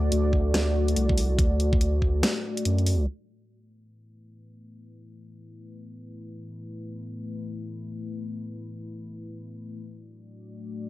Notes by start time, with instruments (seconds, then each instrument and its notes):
Already playing: sub bass D2, analog synth pad A3 F#4 D5
0.12 sub bass D2, closed hi-hat
0.33 kick
0.54 sub bass D2, snare, closed hi-hat
0.88 closed hi-hat
0.96 sub bass C2, closed hi-hat
1.09 kick
1.18 open hi-hat
1.39 sub bass D2, kick, closed hi-hat
1.60 closed hi-hat
1.73 kick
1.81 closed hi-hat
2.02 kick
2.23 snare, closed hi-hat
2.57 closed hi-hat
2.65 sub bass F#2, closed hi-hat
2.78 closed hi-hat
2.86 open hi-hat
3.07 analog synth pad A3 E4 B4
9.84 analog synth pad A3 F#4 D5